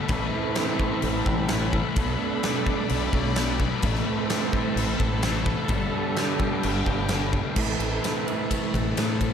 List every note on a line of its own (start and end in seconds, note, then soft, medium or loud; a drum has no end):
0.00 0.12 B3 medium
0.00 0.10 D4 medium
0.00 0.12 A4 medium
0.00 3.79 A4 medium
0.00 7.52 B5 medium
0.08 0.28 A1 loud
0.08 0.54 A2 medium
0.08 1.96 A2 medium
0.08 0.34 E3 loud
0.08 1.98 A3 medium
0.08 0.32 A3 loud
0.08 1.95 C4 medium
0.08 1.97 C4 medium
0.08 1.97 E4 medium
0.08 kick loud
0.08 crash medium
0.13 2.00 B4 medium
0.33 0.56 E3 medium
0.33 0.58 A3 medium
0.55 1.02 A2 medium
0.55 0.81 E3 medium
0.55 0.80 A3 medium
0.55 snare loud
0.55 crash medium
0.80 1.03 E3 medium
0.80 1.05 A3 medium
0.80 kick medium
1.02 1.21 A1 loud
1.02 1.48 A2 medium
1.02 1.27 E3 loud
1.02 1.26 A3 loud
1.02 crash medium
1.26 1.81 A1 loud
1.26 1.49 E3 medium
1.26 1.51 A3 medium
1.26 kick medium
1.48 1.95 A2 medium
1.48 1.74 E3 medium
1.48 1.73 A3 medium
1.48 snare loud
1.48 crash medium
1.73 1.96 E3 medium
1.73 1.98 A3 medium
1.73 kick medium
1.96 2.14 B1 loud
1.96 2.43 B2 medium
1.96 3.83 B2 medium
1.96 2.21 F#3 loud
1.96 3.84 A3 medium
1.96 2.19 B3 loud
1.96 3.84 D4 medium
1.96 3.81 D5 medium
1.96 kick loud
1.96 crash medium
2.00 3.86 A4 loud
2.00 3.86 B4 medium
2.19 2.44 F#3 medium
2.19 2.46 B3 medium
2.43 2.90 B2 medium
2.43 2.69 F#3 loud
2.43 2.67 B3 loud
2.43 snare loud
2.43 crash medium
2.67 2.91 F#3 medium
2.67 2.93 B3 medium
2.67 kick medium
2.89 3.08 B1 loud
2.89 3.36 B2 medium
2.89 3.15 F#3 loud
2.89 3.14 B3 medium
2.89 crash medium
3.13 3.67 B1 medium
3.13 3.37 F#3 medium
3.13 3.39 B3 medium
3.13 kick medium
3.36 3.82 B2 medium
3.36 3.61 F#3 medium
3.36 3.59 B3 medium
3.36 snare loud
3.36 crash medium
3.60 3.83 F#3 medium
3.60 3.85 B3 medium
3.60 kick medium
3.82 4.01 A1 loud
3.82 4.29 A2 loud
3.82 5.70 A2 medium
3.82 4.07 E3 medium
3.82 5.69 A3 medium
3.82 4.06 A3 loud
3.82 5.71 C4 medium
3.82 5.69 C4 medium
3.82 5.71 E4 medium
3.82 7.54 A4 medium
3.82 kick loud
3.82 crash medium
3.87 5.73 B4 loud
3.95 snare soft
4.07 4.30 E3 medium
4.07 4.32 A3 medium
4.30 4.74 A2 medium
4.30 4.54 E3 medium
4.30 4.53 A3 loud
4.30 snare loud
4.30 crash medium
4.53 4.75 E3 medium
4.53 4.78 A3 medium
4.53 kick medium
4.75 4.94 A1 loud
4.75 5.22 A2 loud
4.75 4.99 E3 loud
4.75 4.98 A3 loud
4.75 crash medium
4.98 5.54 A1 loud
4.98 5.23 E3 medium
4.98 5.25 A3 medium
4.98 kick medium
5.22 5.68 A2 medium
5.22 5.47 E3 medium
5.22 5.46 A3 medium
5.22 snare loud
5.22 crash medium
5.46 5.69 E3 medium
5.46 5.72 A3 medium
5.46 kick loud
5.68 5.88 G1 loud
5.68 6.16 G2 medium
5.68 5.94 D3 loud
5.68 7.57 G3 medium
5.68 5.92 G3 loud
5.68 7.57 D4 medium
5.68 7.55 G5 medium
5.68 kick loud
5.68 crash medium
5.72 7.58 B3 medium
5.72 7.58 A4 medium
5.93 6.17 D3 medium
5.93 6.18 G3 medium
6.16 6.62 G2 medium
6.16 6.41 D3 medium
6.16 6.39 G3 medium
6.16 snare loud
6.16 crash medium
6.40 6.63 D3 medium
6.40 6.64 G3 medium
6.40 kick medium
6.63 6.82 G1 medium
6.63 7.09 G2 medium
6.63 6.87 D3 loud
6.63 6.85 G3 loud
6.63 crash medium
6.86 7.41 G1 medium
6.86 7.10 D3 medium
6.86 7.11 G3 medium
6.86 kick medium
7.08 7.56 G2 medium
7.08 7.35 D3 medium
7.08 7.32 G3 medium
7.08 snare loud
7.08 crash medium
7.33 7.57 D3 medium
7.33 7.55 G3 medium
7.33 kick medium
7.56 7.75 A1 loud
7.56 8.26 A2 medium
7.56 8.03 A2 loud
7.56 7.81 E3 loud
7.56 8.28 A3 medium
7.56 7.80 A3 loud
7.56 8.26 C4 loud
7.56 8.26 E4 loud
7.56 9.33 A4 medium
7.56 8.26 B4 loud
7.56 9.33 B5 medium
7.56 kick loud
7.56 crash loud
7.79 7.98 A1 medium
7.79 8.04 E3 medium
7.79 8.06 A3 medium
7.79 ride medium
8.04 8.50 A2 medium
8.04 8.28 E3 medium
8.04 8.27 A3 medium
8.04 snare loud
8.04 ride medium
8.26 9.33 A2 medium
8.26 8.98 E3 medium
8.26 8.99 A3 medium
8.26 9.33 A3 medium
8.26 9.33 C4 medium
8.26 9.33 E4 medium
8.26 9.33 B4 medium
8.26 ride medium
8.51 kick medium
8.51 ride loud
8.74 8.92 A1 medium
8.74 kick medium
8.74 ride medium
8.97 9.33 A2 medium
8.97 9.23 E3 medium
8.97 9.21 A3 medium
8.97 snare loud
8.97 ride medium
9.21 9.33 E3 medium
9.21 9.33 A3 medium
9.21 kick medium
9.21 ride medium